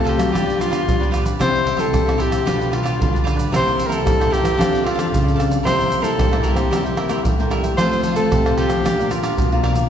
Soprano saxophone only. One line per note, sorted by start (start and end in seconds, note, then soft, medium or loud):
0.08 0.62 G4 loud
0.61 1.14 F4 medium
1.41 1.81 C5 loud
1.80 2.22 A4 loud
2.21 2.76 G4 medium
2.74 3.27 F4 medium
3.56 3.88 C5 loud
3.86 3.94 A#4 medium
3.93 4.34 A4 loud
4.32 4.86 G4 loud
4.84 5.38 F4 medium
5.65 6.04 C5 loud
6.03 6.43 A4 medium
6.43 7.47 G4 medium
7.77 8.15 C5 loud
8.16 8.59 A4 medium
8.57 9.12 G4 loud
9.11 9.64 F4 medium